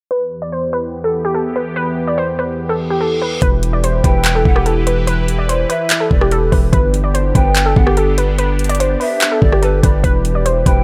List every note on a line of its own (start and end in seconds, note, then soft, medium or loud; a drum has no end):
0.11 3.39 E2 medium
0.11 3.39 E3 medium
0.11 3.39 B3 medium
0.11 3.39 G4 medium
0.11 0.40 B4 loud
0.42 0.51 D5 medium
0.52 0.71 C5 medium
0.73 1.02 B4 medium
1.04 1.22 A4 medium
1.25 1.34 G4 medium
1.35 1.53 A4 medium
1.56 1.74 B4 medium
1.76 2.05 B4 loud
2.08 2.17 D5 medium
2.18 2.36 C5 medium
2.39 2.68 B4 medium
2.59 reverse cymbal medium
2.69 2.88 A4 medium
2.91 3.00 G4 medium
3.01 3.19 A4 medium
3.22 3.40 B4 medium
3.42 4.01 E1 loud
3.42 6.70 E3 medium
3.42 6.70 E4 medium
3.42 6.70 G4 medium
3.42 3.71 B4 loud
3.42 6.70 B4 medium
3.42 kick loud
3.42 closed hi-hat medium
3.63 closed hi-hat medium
3.73 3.82 D5 medium
3.84 4.02 C5 medium
3.84 closed hi-hat medium
4.04 4.44 E1 loud
4.04 4.33 B4 medium
4.04 4.43 G5 medium
4.04 kick medium
4.04 closed hi-hat medium
4.24 clap loud
4.24 closed hi-hat medium
4.35 4.54 A4 medium
4.45 5.66 E1 loud
4.45 4.65 F#5 medium
4.45 kick loud
4.56 4.65 G4 medium
4.56 cross-stick medium
4.66 4.84 A4 medium
4.66 closed hi-hat medium
4.87 5.05 B4 medium
4.87 closed hi-hat medium
5.07 5.37 B4 loud
5.07 closed hi-hat medium
5.28 closed hi-hat medium
5.39 5.48 D5 medium
5.49 5.67 C5 medium
5.49 closed hi-hat medium
5.69 5.99 B4 medium
5.69 6.08 E5 medium
5.69 closed hi-hat medium
5.90 clap loud
5.90 closed hi-hat medium
6.00 6.19 A4 medium
6.11 6.51 E1 loud
6.11 6.31 D5 medium
6.11 kick loud
6.21 6.31 G4 medium
6.21 cross-stick medium
6.31 6.50 A4 medium
6.31 closed hi-hat medium
6.52 6.72 E1 loud
6.52 6.71 B4 medium
6.52 kick medium
6.52 open hi-hat medium
6.73 7.33 G1 loud
6.73 10.01 B3 medium
6.73 10.01 D4 medium
6.73 10.84 G4 medium
6.73 7.02 B4 loud
6.73 kick loud
6.73 closed hi-hat medium
6.94 closed hi-hat medium
7.04 7.13 D5 medium
7.14 7.33 C5 medium
7.14 closed hi-hat medium
7.35 7.75 G1 loud
7.35 7.64 B4 medium
7.35 7.74 G5 medium
7.35 kick medium
7.35 closed hi-hat medium
7.55 clap loud
7.55 closed hi-hat medium
7.66 7.84 A4 medium
7.76 8.96 G1 loud
7.76 7.96 F#5 medium
7.76 kick loud
7.87 7.96 G4 medium
7.87 cross-stick medium
7.97 8.16 A4 medium
7.97 closed hi-hat medium
8.18 8.36 B4 medium
8.18 closed hi-hat medium
8.38 8.68 B4 loud
8.38 closed hi-hat medium
8.59 closed hi-hat medium
8.64 closed hi-hat medium
8.69 8.79 D5 medium
8.69 closed hi-hat medium
8.75 closed hi-hat medium
8.80 8.98 C5 medium
8.80 closed hi-hat medium
9.00 9.29 B4 medium
9.00 9.39 E5 medium
9.00 open hi-hat medium
9.21 clap loud
9.21 closed hi-hat medium
9.32 9.50 A4 medium
9.42 9.82 G1 loud
9.42 9.61 D5 medium
9.42 kick loud
9.52 9.62 G4 medium
9.52 cross-stick medium
9.62 9.81 A4 medium
9.62 9.82 B4 medium
9.62 closed hi-hat medium
9.83 10.03 G1 loud
9.83 10.02 B4 medium
9.83 10.03 D5 medium
9.83 kick medium
9.83 closed hi-hat medium
10.04 10.64 E1 loud
10.04 10.84 E3 medium
10.04 10.84 E4 medium
10.04 10.33 B4 loud
10.04 10.84 B4 medium
10.04 kick loud
10.04 closed hi-hat medium
10.25 closed hi-hat medium
10.35 10.44 D5 medium
10.46 10.64 C5 medium
10.46 closed hi-hat medium
10.66 10.84 E1 loud
10.66 10.84 B4 medium
10.66 10.84 G5 medium
10.66 kick medium
10.66 closed hi-hat medium